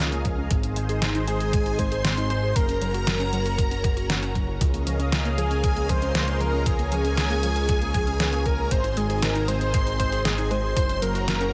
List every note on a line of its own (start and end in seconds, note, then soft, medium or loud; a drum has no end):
0.00 0.48 C#2 medium
0.00 0.10 F3 medium
0.00 0.47 C#4 medium
0.00 2.52 G#4 medium
0.00 0.47 A#4 medium
0.00 0.47 D#5 medium
0.00 0.47 F5 loud
0.12 0.19 A#3 loud
0.12 closed hi-hat soft
0.25 0.32 F3 loud
0.25 kick medium
0.25 closed hi-hat soft
0.38 0.44 C#4 medium
0.51 2.53 G#1 medium
0.51 0.63 G#3 medium
0.51 2.54 D#4 medium
0.51 2.54 C5 loud
0.51 kick loud
0.51 closed hi-hat loud
0.63 0.70 D#4 medium
0.63 closed hi-hat soft
0.76 0.87 G#3 loud
0.76 closed hi-hat medium
0.89 1.00 G#4 loud
0.89 closed hi-hat soft
1.02 1.13 G#3 medium
1.02 snare loud
1.02 closed hi-hat loud
1.15 1.21 D#4 loud
1.15 closed hi-hat soft
1.27 1.34 G#3 loud
1.27 1.80 G#4 loud
1.27 1.75 G#5 loud
1.27 closed hi-hat medium
1.40 1.47 G#4 medium
1.40 closed hi-hat soft
1.53 1.66 G#3 medium
1.53 kick loud
1.53 closed hi-hat medium
1.66 closed hi-hat soft
1.79 1.90 G#3 loud
1.79 2.29 C5 loud
1.79 2.27 C6 loud
1.79 kick medium
1.79 closed hi-hat medium
1.92 2.03 G#4 loud
1.92 closed hi-hat soft
2.05 2.16 G#3 medium
2.05 snare loud
2.05 closed hi-hat loud
2.17 2.24 D#4 loud
2.17 closed hi-hat soft
2.30 2.37 G#3 loud
2.30 2.57 C5 loud
2.30 2.54 C6 loud
2.30 closed hi-hat soft
2.43 2.50 G#4 medium
2.56 4.58 F#1 medium
2.56 2.68 F#3 medium
2.56 8.67 C#4 medium
2.56 4.59 F#4 medium
2.56 4.35 A#4 loud
2.56 4.59 A#4 loud
2.56 4.31 A#5 loud
2.56 kick loud
2.56 closed hi-hat loud
2.69 2.75 C#4 medium
2.69 closed hi-hat soft
2.81 2.92 F#3 loud
2.81 closed hi-hat medium
2.94 3.05 F#4 loud
2.94 closed hi-hat soft
3.07 3.18 F#3 medium
3.07 snare loud
3.07 closed hi-hat medium
3.20 3.26 C#4 loud
3.20 closed hi-hat soft
3.33 3.39 F#3 loud
3.33 closed hi-hat medium
3.46 3.52 F#4 medium
3.46 closed hi-hat soft
3.58 3.71 F#3 medium
3.58 kick loud
3.58 closed hi-hat medium
3.71 3.78 C#4 medium
3.71 closed hi-hat soft
3.84 3.95 F#3 loud
3.84 kick loud
3.84 closed hi-hat medium
3.97 4.08 F#4 loud
3.97 closed hi-hat soft
4.10 4.21 F#3 medium
4.10 snare loud
4.10 closed hi-hat medium
4.22 4.29 C#4 loud
4.22 closed hi-hat soft
4.35 4.42 F#3 loud
4.35 kick medium
4.35 closed hi-hat soft
4.48 4.55 F#4 medium
4.61 8.69 C#2 medium
4.61 4.73 F3 medium
4.61 10.73 G#4 medium
4.61 8.67 A#4 medium
4.61 6.64 D#5 medium
4.61 8.67 F5 loud
4.61 kick loud
4.61 closed hi-hat medium
4.74 4.80 A#3 medium
4.74 closed hi-hat soft
4.87 4.98 F3 loud
4.87 closed hi-hat medium
4.99 5.10 C#4 loud
4.99 closed hi-hat soft
5.12 5.23 F3 medium
5.12 snare loud
5.12 closed hi-hat medium
5.25 5.32 A#3 loud
5.25 closed hi-hat soft
5.38 5.45 F3 loud
5.38 5.91 G#4 loud
5.38 5.86 G#5 loud
5.38 closed hi-hat medium
5.51 5.57 C#4 medium
5.51 closed hi-hat soft
5.64 5.76 F3 medium
5.64 kick loud
5.64 closed hi-hat medium
5.76 5.83 A#3 medium
5.76 closed hi-hat soft
5.89 6.00 F3 loud
5.89 6.42 C5 loud
5.89 6.37 C6 loud
5.89 kick medium
5.89 closed hi-hat medium
6.02 6.13 C#4 loud
6.02 closed hi-hat soft
6.15 6.26 F3 medium
6.15 snare loud
6.15 closed hi-hat medium
6.28 6.34 A#3 loud
6.28 closed hi-hat soft
6.41 6.47 F3 loud
6.41 6.68 A#4 loud
6.41 6.64 A#5 loud
6.41 closed hi-hat soft
6.53 6.60 C#4 medium
6.66 6.78 F3 medium
6.66 8.47 G#4 loud
6.66 8.69 C#5 medium
6.66 8.42 G#5 loud
6.66 kick loud
6.66 closed hi-hat medium
6.79 6.86 A#3 medium
6.79 closed hi-hat soft
6.92 7.03 F3 loud
6.92 closed hi-hat medium
7.05 7.16 C#4 loud
7.05 closed hi-hat soft
7.17 7.28 F3 medium
7.17 snare loud
7.17 closed hi-hat medium
7.30 7.37 A#3 loud
7.30 closed hi-hat soft
7.43 7.50 F3 loud
7.43 closed hi-hat medium
7.56 7.62 C#4 medium
7.56 closed hi-hat soft
7.69 7.81 F3 medium
7.69 kick loud
7.69 closed hi-hat medium
7.82 7.88 A#3 medium
7.82 closed hi-hat soft
7.94 8.05 F3 loud
7.94 kick loud
7.94 closed hi-hat medium
8.07 8.18 C#4 loud
8.07 closed hi-hat soft
8.20 8.31 F3 medium
8.20 snare loud
8.20 closed hi-hat medium
8.33 8.39 A#3 loud
8.33 closed hi-hat soft
8.46 8.52 F3 loud
8.46 8.73 A#4 loud
8.46 8.70 A#5 loud
8.46 kick medium
8.46 closed hi-hat soft
8.59 8.65 C#4 medium
8.71 10.74 G#1 medium
8.71 8.84 G#3 medium
8.71 10.74 C4 medium
8.71 10.74 D#4 medium
8.71 8.99 C5 loud
8.71 8.95 C6 loud
8.71 kick loud
8.71 closed hi-hat medium
8.84 8.91 D#4 medium
8.84 closed hi-hat soft
8.97 9.08 G#3 loud
8.97 9.24 G#4 loud
8.97 9.21 G#5 medium
8.97 closed hi-hat medium
9.10 9.21 G#4 loud
9.10 closed hi-hat soft
9.22 9.33 G#3 medium
9.22 9.48 A#4 loud
9.22 9.46 A#5 loud
9.22 snare loud
9.22 closed hi-hat medium
9.35 9.42 D#4 loud
9.35 closed hi-hat soft
9.48 9.55 G#3 loud
9.48 9.96 C5 loud
9.48 9.96 C6 loud
9.48 closed hi-hat medium
9.61 9.68 G#4 medium
9.61 closed hi-hat soft
9.74 9.86 G#3 medium
9.74 kick loud
9.74 closed hi-hat medium
9.87 9.93 D#4 medium
9.87 closed hi-hat soft
10.00 10.10 G#3 loud
10.00 10.23 C5 loud
10.00 10.23 C6 loud
10.00 kick medium
10.00 closed hi-hat medium
10.12 10.23 G#4 loud
10.12 closed hi-hat soft
10.25 10.36 G#3 medium
10.25 10.52 G#4 medium
10.25 10.49 G#5 medium
10.25 snare loud
10.25 closed hi-hat medium
10.38 10.44 D#4 loud
10.38 closed hi-hat soft
10.51 10.57 G#3 loud
10.51 10.76 C5 loud
10.51 10.75 C6 loud
10.51 closed hi-hat soft
10.64 10.70 G#4 medium
10.76 11.53 F#1 medium
10.76 10.89 F#3 medium
10.76 11.53 A#3 medium
10.76 11.53 C#4 medium
10.76 11.53 F#4 medium
10.76 11.03 C5 loud
10.76 11.00 C6 loud
10.76 kick loud
10.76 closed hi-hat loud
10.89 10.96 C#4 medium
10.89 closed hi-hat soft
11.02 11.13 F#3 loud
11.02 11.27 A#4 loud
11.02 11.26 A#5 loud
11.02 closed hi-hat medium
11.15 11.26 F#4 loud
11.15 closed hi-hat soft
11.27 11.39 F#3 medium
11.27 11.51 A#4 loud
11.27 11.51 A#5 loud
11.27 snare loud
11.27 closed hi-hat loud
11.40 11.47 C#4 loud
11.40 closed hi-hat soft